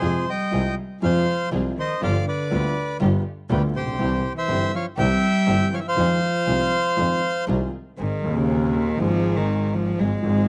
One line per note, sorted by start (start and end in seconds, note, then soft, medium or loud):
0.00 0.23 F2 medium
0.00 0.24 C3 medium
0.00 0.23 C3 medium
0.00 0.23 F3 medium
0.00 0.23 G#3 medium
0.00 0.23 C4 medium
0.00 0.23 F4 medium
0.00 0.25 G#4 medium
0.00 0.23 G#4 medium
0.00 0.30 C5 medium
0.28 0.74 G3 medium
0.28 0.75 D#5 medium
0.28 0.75 G5 medium
0.51 0.73 C2 medium
0.51 0.73 C3 medium
0.51 0.73 F3 medium
0.51 0.73 G#3 medium
0.51 0.73 C4 medium
0.51 0.73 F4 medium
0.51 0.73 G#4 medium
1.01 1.23 F2 medium
1.01 1.23 C3 medium
1.01 1.48 F3 medium
1.01 1.23 F3 medium
1.01 1.23 G#3 medium
1.01 1.23 C4 medium
1.01 1.23 F4 medium
1.01 1.23 G#4 medium
1.01 1.50 C5 medium
1.01 1.49 F5 medium
1.51 1.72 C2 medium
1.51 1.73 C2 medium
1.51 1.72 C3 medium
1.51 1.73 F3 soft
1.51 1.72 G#3 medium
1.51 1.72 C4 medium
1.51 1.72 F4 medium
1.51 1.73 G#4 medium
1.77 2.00 D#3 medium
1.77 2.01 C5 medium
1.77 2.02 D#5 medium
2.01 2.22 G1 medium
2.01 2.22 G2 medium
2.01 2.22 D3 medium
2.01 2.25 F3 medium
2.01 2.22 G3 medium
2.01 2.22 B3 medium
2.01 2.22 F4 medium
2.01 2.22 G4 medium
2.01 2.25 D5 medium
2.01 2.26 F5 medium
2.27 2.97 D3 medium
2.27 2.97 B4 medium
2.27 2.97 D5 medium
2.50 2.71 D2 medium
2.50 2.72 D2 medium
2.50 2.71 D3 medium
2.50 2.71 G3 medium
2.50 2.72 B3 medium
2.50 2.72 F4 medium
2.50 2.72 G4 medium
3.00 3.21 G1 loud
3.00 3.21 G1 medium
3.00 3.21 G2 medium
3.00 3.21 D3 medium
3.00 3.21 G3 medium
3.00 3.21 B3 medium
3.00 3.21 F4 medium
3.00 3.21 G4 medium
3.49 3.70 D2 medium
3.49 3.61 B2 medium
3.49 3.70 D3 medium
3.49 3.70 G3 medium
3.49 3.70 B3 medium
3.49 3.70 F4 medium
3.49 3.70 G4 medium
3.49 3.63 G4 medium
3.49 3.62 B4 medium
3.74 3.99 A#1 medium
3.74 4.32 C3 medium
3.74 4.33 G4 medium
3.74 4.33 C5 medium
3.81 3.87 A1 soft
3.87 3.93 A#1 medium
3.93 3.99 B1 medium
3.99 4.20 C2 medium
3.99 4.20 C3 medium
3.99 4.19 E3 medium
3.99 4.20 G3 medium
3.99 4.20 C4 medium
3.99 4.20 E4 medium
3.99 4.20 G4 medium
4.36 4.70 E3 medium
4.36 4.72 C5 medium
4.36 4.75 E5 loud
4.48 4.69 G1 medium
4.48 4.69 G2 medium
4.48 4.69 E3 medium
4.48 4.69 G3 medium
4.48 4.69 C4 medium
4.48 4.69 E4 medium
4.48 4.69 G4 medium
4.73 4.84 F3 medium
4.73 4.86 C#5 medium
4.73 4.86 F5 medium
4.97 5.18 C2 loud
4.97 5.19 C2 medium
4.97 5.19 C3 medium
4.97 5.19 E3 medium
4.97 5.68 G3 medium
4.97 5.19 G3 medium
4.97 5.18 C4 medium
4.97 5.19 C4 medium
4.97 5.18 E4 medium
4.97 5.18 G4 medium
4.97 5.19 G4 medium
4.97 5.69 E5 medium
4.97 5.75 G5 loud
5.47 5.68 G1 medium
5.47 5.68 G2 medium
5.47 5.68 E3 medium
5.47 5.68 G3 medium
5.47 5.68 C4 medium
5.47 5.68 E4 medium
5.47 5.68 G4 medium
5.73 5.78 F3 medium
5.73 5.80 C#5 medium
5.73 5.80 F5 medium
5.79 5.85 E3 medium
5.79 5.86 E5 medium
5.87 7.44 F3 medium
5.87 7.45 C5 medium
5.87 7.45 F5 loud
5.96 6.17 F2 medium
5.96 6.18 F2 medium
5.96 6.18 D#3 medium
5.96 6.18 F3 medium
5.96 6.18 G#3 medium
5.96 6.18 C4 medium
5.96 6.18 D#4 medium
5.96 6.18 F4 medium
5.96 6.18 G#4 medium
6.46 6.68 C2 medium
6.46 6.68 C3 medium
6.46 6.68 D#3 medium
6.46 6.68 G#3 medium
6.46 6.68 C4 medium
6.46 6.68 D#4 medium
6.46 6.68 F4 medium
6.46 6.68 G#4 medium
6.97 7.18 F2 medium
6.97 7.18 D#3 medium
6.97 7.18 F3 medium
6.97 7.18 G#3 medium
6.97 7.18 C4 medium
6.97 7.18 D#4 medium
6.97 7.18 F4 medium
6.97 7.19 F4 medium
6.97 7.18 G#4 medium
7.47 7.69 C2 medium
7.47 7.70 C2 medium
7.47 7.70 C3 medium
7.47 7.69 D#3 medium
7.47 7.70 G#3 soft
7.47 7.70 C4 medium
7.47 7.69 D#4 medium
7.47 7.69 F4 medium
7.47 7.70 F4 medium
7.47 7.69 G#4 medium
7.99 8.20 G#1 medium
7.99 8.20 G#2 soft
7.99 8.38 D#3 medium
7.99 8.20 D#3 soft
7.99 8.20 G#3 soft
7.99 8.20 C4 medium
7.99 8.20 C4 soft
7.99 8.20 D#4 soft
7.99 8.20 G#4 medium
7.99 8.21 G#4 soft
8.23 8.95 D#1 medium
8.23 8.95 D#2 medium
8.23 8.96 D#2 medium
8.23 8.95 D#3 medium
8.23 8.95 G#3 medium
8.23 8.95 C4 medium
8.23 8.96 C4 medium
8.23 8.95 D#4 medium
8.23 8.96 G#4 medium
8.36 8.75 C#3 medium
8.73 9.00 D#3 medium
8.97 9.93 G#1 medium
8.97 9.94 G#1 loud
8.97 9.93 G#2 medium
8.97 9.92 D#3 medium
8.97 9.38 F3 loud
8.97 9.93 G#3 medium
8.97 9.93 C4 medium
8.97 9.94 C4 medium
8.97 9.93 D#4 medium
8.97 9.93 G#4 medium
9.02 9.94 G#4 medium
9.37 9.76 D#3 medium
9.74 10.01 F3 medium
9.97 10.19 G#1 soft
9.97 10.19 G#1 medium
9.97 10.19 G#2 medium
9.97 10.19 F3 soft
9.97 10.19 G#3 soft
9.97 10.48 G#3 medium
9.97 10.19 C4 medium
9.97 10.19 C4 soft
9.97 10.19 F4 soft
9.97 10.19 G#4 medium
9.97 10.19 G#4 soft
10.22 10.48 G#1 medium
10.22 10.48 G#2 medium
10.22 10.48 F3 medium
10.22 10.48 G#3 medium
10.22 10.48 C4 medium
10.22 10.48 F4 medium
10.22 10.48 G#4 medium
10.26 10.48 G#4 medium